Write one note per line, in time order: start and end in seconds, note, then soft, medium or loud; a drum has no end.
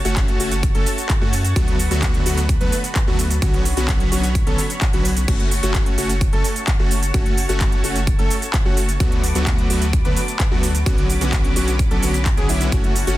0.00 5.24 F#4 medium
0.00 1.52 C#5 medium
0.00 3.38 A5 medium
0.00 1.52 C#6 medium
0.05 0.38 F#1 loud
0.05 0.37 A3 medium
0.05 0.37 C#4 medium
0.05 0.37 F#4 medium
0.05 closed hi-hat medium
0.05 shaker soft
0.16 kick loud
0.16 clap loud
0.16 closed hi-hat medium
0.16 shaker soft
0.28 closed hi-hat soft
0.40 0.72 F#1 medium
0.40 0.53 A3 medium
0.40 0.53 C#4 medium
0.40 0.53 F#4 medium
0.40 open hi-hat loud
0.40 shaker medium
0.51 closed hi-hat medium
0.51 shaker soft
0.63 kick loud
0.63 closed hi-hat medium
0.63 shaker soft
0.75 0.85 F#1 loud
0.75 0.88 A3 medium
0.75 0.88 C#4 medium
0.75 0.88 A4 medium
0.75 closed hi-hat soft
0.86 open hi-hat loud
0.86 shaker medium
0.98 closed hi-hat medium
0.98 shaker medium
1.09 kick loud
1.09 clap loud
1.09 closed hi-hat medium
1.09 shaker soft
1.21 1.54 F#2 loud
1.21 1.34 A3 loud
1.21 1.34 C#4 medium
1.21 1.34 F#4 loud
1.33 open hi-hat loud
1.33 shaker medium
1.45 closed hi-hat medium
1.45 shaker soft
1.56 1.89 D2 loud
1.56 1.77 D3 medium
1.56 1.77 F#3 medium
1.56 1.77 A3 medium
1.56 1.77 B3 medium
1.56 1.77 F#4 medium
1.56 3.40 B4 medium
1.56 kick loud
1.56 closed hi-hat medium
1.56 shaker soft
1.68 closed hi-hat soft
1.79 open hi-hat loud
1.79 shaker medium
1.91 2.24 D2 loud
1.91 2.23 D3 medium
1.91 2.23 F#3 medium
1.91 2.23 A3 medium
1.91 2.23 B3 medium
1.91 2.23 F#4 medium
1.91 closed hi-hat medium
1.91 shaker soft
2.03 kick loud
2.03 clap loud
2.03 closed hi-hat medium
2.03 shaker soft
2.14 closed hi-hat soft
2.26 2.58 D2 medium
2.26 2.39 D3 medium
2.26 2.39 F#3 medium
2.26 2.39 A3 medium
2.26 2.39 B3 medium
2.26 2.39 F#4 medium
2.26 open hi-hat loud
2.26 shaker medium
2.37 closed hi-hat medium
2.37 shaker soft
2.49 kick loud
2.49 closed hi-hat medium
2.49 shaker soft
2.61 2.72 D2 loud
2.61 2.74 D3 medium
2.61 2.74 F#3 medium
2.61 2.74 A3 medium
2.61 2.74 B3 medium
2.61 2.74 B4 loud
2.61 closed hi-hat soft
2.72 open hi-hat loud
2.72 shaker medium
2.84 closed hi-hat medium
2.84 shaker soft
2.96 kick loud
2.96 clap loud
2.96 closed hi-hat medium
2.96 shaker soft
3.07 3.40 D2 medium
3.07 3.20 D3 loud
3.07 3.20 F#3 medium
3.07 3.20 A3 medium
3.07 3.20 B3 medium
3.07 3.20 F#4 loud
3.19 open hi-hat loud
3.19 shaker medium
3.31 closed hi-hat medium
3.31 shaker soft
3.42 3.75 B1 loud
3.42 3.63 D3 medium
3.42 3.63 F#3 medium
3.42 3.63 B3 medium
3.42 3.63 C#4 medium
3.42 3.63 F#4 loud
3.42 3.63 F#4 medium
3.42 5.26 C#5 medium
3.42 5.26 B5 medium
3.42 kick loud
3.42 closed hi-hat medium
3.42 shaker soft
3.54 closed hi-hat soft
3.65 open hi-hat loud
3.65 shaker medium
3.77 4.10 B1 loud
3.77 4.09 D3 medium
3.77 4.09 F#3 medium
3.77 4.09 B3 medium
3.77 4.09 C#4 medium
3.77 4.09 F#4 medium
3.77 closed hi-hat medium
3.77 shaker soft
3.88 kick loud
3.88 clap loud
3.88 closed hi-hat medium
3.88 shaker soft
4.00 closed hi-hat soft
4.12 4.44 B1 medium
4.12 4.25 D3 medium
4.12 4.25 F#3 medium
4.12 4.25 B3 medium
4.12 4.25 C#4 medium
4.12 4.25 F#4 medium
4.12 open hi-hat loud
4.12 shaker medium
4.24 closed hi-hat medium
4.24 shaker soft
4.35 kick loud
4.35 closed hi-hat medium
4.35 shaker soft
4.47 4.58 B1 loud
4.47 4.60 D3 medium
4.47 4.60 F#3 medium
4.47 4.60 B3 medium
4.47 4.60 C#4 medium
4.47 4.60 A4 medium
4.47 closed hi-hat soft
4.58 open hi-hat loud
4.58 shaker medium
4.70 closed hi-hat medium
4.70 shaker soft
4.82 kick loud
4.82 clap loud
4.82 closed hi-hat medium
4.82 shaker soft
4.93 5.26 B1 loud
4.93 5.06 D3 loud
4.93 5.06 F#3 medium
4.93 5.06 B3 medium
4.93 5.06 C#4 medium
4.93 5.06 F#4 loud
4.93 closed hi-hat soft
5.05 open hi-hat loud
5.05 shaker medium
5.17 closed hi-hat medium
5.17 shaker soft
5.28 5.61 F#1 loud
5.28 5.49 A3 medium
5.28 5.49 C#4 medium
5.28 5.49 F#4 medium
5.28 8.97 F#4 medium
5.28 5.49 F#4 medium
5.28 8.97 C#5 medium
5.28 10.82 A5 medium
5.28 8.97 C#6 medium
5.28 kick loud
5.28 closed hi-hat medium
5.28 crash medium
5.28 shaker soft
5.40 closed hi-hat soft
5.51 open hi-hat loud
5.51 shaker medium
5.63 5.96 F#1 loud
5.63 5.95 A3 medium
5.63 5.95 C#4 medium
5.63 5.95 F#4 medium
5.63 closed hi-hat medium
5.63 shaker soft
5.75 kick loud
5.75 clap loud
5.75 closed hi-hat medium
5.75 shaker soft
5.86 closed hi-hat soft
5.98 6.30 F#1 loud
5.98 6.11 A3 medium
5.98 6.11 C#4 medium
5.98 6.11 F#4 medium
5.98 open hi-hat loud
5.98 shaker medium
6.09 closed hi-hat medium
6.09 shaker soft
6.21 kick loud
6.21 closed hi-hat medium
6.21 shaker soft
6.33 6.44 F#1 loud
6.33 6.46 A3 medium
6.33 6.46 C#4 medium
6.33 6.46 A4 loud
6.33 6.46 A4 medium
6.33 closed hi-hat soft
6.44 open hi-hat loud
6.44 shaker medium
6.56 closed hi-hat medium
6.56 shaker soft
6.68 kick loud
6.68 clap loud
6.68 closed hi-hat medium
6.68 shaker soft
6.79 7.12 F#1 loud
6.79 6.92 A3 loud
6.79 6.92 C#4 medium
6.79 6.92 F#4 loud
6.91 open hi-hat loud
6.91 shaker medium
7.03 closed hi-hat medium
7.03 shaker soft
7.14 7.47 F#1 loud
7.14 7.35 A3 medium
7.14 7.35 C#4 medium
7.14 7.35 F#4 loud
7.14 7.35 F#4 medium
7.14 kick loud
7.14 closed hi-hat medium
7.14 shaker soft
7.26 closed hi-hat soft
7.37 open hi-hat loud
7.37 shaker medium
7.49 7.82 F#1 loud
7.49 7.81 A3 medium
7.49 7.81 C#4 medium
7.49 7.81 F#4 medium
7.49 closed hi-hat medium
7.49 shaker soft
7.61 kick loud
7.61 clap loud
7.61 closed hi-hat medium
7.61 shaker soft
7.72 closed hi-hat soft
7.84 8.17 F#1 loud
7.84 7.97 A3 medium
7.84 7.97 C#4 medium
7.84 7.97 F#4 medium
7.84 open hi-hat loud
7.84 shaker medium
7.96 closed hi-hat medium
7.96 shaker soft
8.07 kick loud
8.07 closed hi-hat medium
8.07 shaker soft
8.19 8.30 F#1 loud
8.19 8.32 A3 medium
8.19 8.32 C#4 medium
8.19 8.32 A4 medium
8.19 closed hi-hat soft
8.30 open hi-hat loud
8.30 shaker medium
8.42 closed hi-hat medium
8.42 shaker soft
8.54 kick loud
8.54 clap loud
8.54 closed hi-hat medium
8.54 shaker soft
8.65 8.98 F#1 loud
8.65 8.78 A3 loud
8.65 8.78 C#4 medium
8.65 8.78 F#4 loud
8.65 8.79 F#4 loud
8.77 open hi-hat loud
8.77 shaker medium
8.89 closed hi-hat medium
8.89 shaker soft
9.00 9.33 D2 loud
9.00 9.21 D3 medium
9.00 9.21 F#3 medium
9.00 9.21 A3 medium
9.00 9.21 B3 medium
9.00 9.21 F#4 medium
9.00 13.18 F#4 medium
9.00 10.84 B4 medium
9.00 10.84 D6 medium
9.00 kick loud
9.00 closed hi-hat medium
9.00 shaker soft
9.12 closed hi-hat soft
9.24 open hi-hat loud
9.24 shaker medium
9.35 9.68 D2 loud
9.35 9.67 D3 medium
9.35 9.67 F#3 medium
9.35 9.67 A3 medium
9.35 9.67 B3 medium
9.35 9.67 F#4 medium
9.35 closed hi-hat medium
9.35 shaker soft
9.47 kick loud
9.47 clap loud
9.47 closed hi-hat medium
9.47 shaker soft
9.58 closed hi-hat soft
9.70 10.03 D2 loud
9.70 9.83 D3 medium
9.70 9.83 F#3 medium
9.70 9.83 A3 medium
9.70 9.83 B3 medium
9.70 9.83 F#4 medium
9.70 open hi-hat loud
9.70 shaker medium
9.82 closed hi-hat medium
9.82 shaker soft
9.93 kick loud
9.93 closed hi-hat medium
9.93 shaker soft
10.05 10.16 D2 loud
10.05 10.18 D3 medium
10.05 10.18 F#3 medium
10.05 10.18 A3 medium
10.05 10.18 B3 medium
10.05 10.18 B4 medium
10.05 closed hi-hat soft
10.17 open hi-hat loud
10.17 shaker medium
10.28 closed hi-hat medium
10.28 shaker soft
10.40 kick loud
10.40 clap loud
10.40 closed hi-hat medium
10.40 shaker soft
10.51 10.84 D2 medium
10.51 10.64 D3 loud
10.51 10.64 F#3 medium
10.51 10.65 A3 medium
10.51 10.65 B3 medium
10.51 10.64 F#4 loud
10.51 10.65 F#4 loud
10.63 open hi-hat loud
10.63 shaker medium
10.75 closed hi-hat medium
10.75 shaker soft
10.86 11.19 B1 loud
10.86 11.07 D3 medium
10.86 11.07 F#3 medium
10.86 11.07 B3 medium
10.86 11.07 C#4 medium
10.86 13.18 C#4 medium
10.86 11.07 F#4 medium
10.86 11.07 F#4 loud
10.86 12.70 B5 medium
10.86 12.70 D6 medium
10.86 kick loud
10.86 closed hi-hat medium
10.86 shaker soft
10.98 closed hi-hat soft
11.10 open hi-hat loud
11.10 shaker medium
11.21 11.54 B1 loud
11.21 11.53 D3 medium
11.21 11.53 F#3 medium
11.21 11.53 B3 medium
11.21 11.53 C#4 medium
11.21 11.53 F#4 medium
11.21 closed hi-hat medium
11.21 shaker soft
11.33 kick loud
11.33 clap loud
11.33 closed hi-hat medium
11.33 shaker soft
11.44 closed hi-hat soft
11.56 11.89 B1 loud
11.56 11.69 D3 medium
11.56 11.69 F#3 medium
11.56 11.69 B3 medium
11.56 11.69 C#4 medium
11.56 11.69 F#4 medium
11.56 open hi-hat loud
11.56 shaker medium
11.68 closed hi-hat medium
11.68 shaker soft
11.79 kick loud
11.79 closed hi-hat medium
11.79 shaker soft
11.91 12.00 B1 loud
11.91 12.00 D3 medium
11.91 12.00 F#3 medium
11.91 12.00 B3 medium
11.91 12.00 C#4 medium
11.91 12.00 A4 medium
11.91 closed hi-hat soft
12.02 12.35 B1 medium
12.02 12.16 D3 medium
12.02 12.16 F#3 medium
12.02 12.16 B3 medium
12.02 12.16 C#4 medium
12.02 12.16 F#4 medium
12.02 open hi-hat loud
12.02 shaker medium
12.14 closed hi-hat medium
12.14 shaker soft
12.26 kick loud
12.26 clap loud
12.26 closed hi-hat medium
12.26 shaker soft
12.37 12.47 B1 medium
12.37 12.47 D3 medium
12.37 12.47 F#3 medium
12.37 12.47 B3 medium
12.37 12.47 C#4 medium
12.37 12.47 G#4 loud
12.37 closed hi-hat soft
12.49 12.70 B1 loud
12.49 12.69 D3 medium
12.49 12.69 F#3 medium
12.49 12.69 B3 medium
12.49 12.69 C#4 medium
12.49 12.69 E4 medium
12.49 open hi-hat loud
12.49 shaker medium
12.61 closed hi-hat medium
12.61 shaker soft
12.72 13.05 F#1 loud
12.72 12.93 A3 medium
12.72 12.93 C#4 medium
12.72 12.93 F#4 medium
12.72 12.93 F#4 loud
12.72 13.18 A5 medium
12.72 13.18 C#6 medium
12.72 kick loud
12.72 closed hi-hat medium
12.72 shaker soft
12.84 closed hi-hat soft
12.96 open hi-hat loud
12.96 shaker medium
13.07 13.18 F#1 loud
13.07 13.18 A3 medium
13.07 13.18 C#4 medium
13.07 13.18 F#4 medium
13.07 closed hi-hat medium
13.07 shaker soft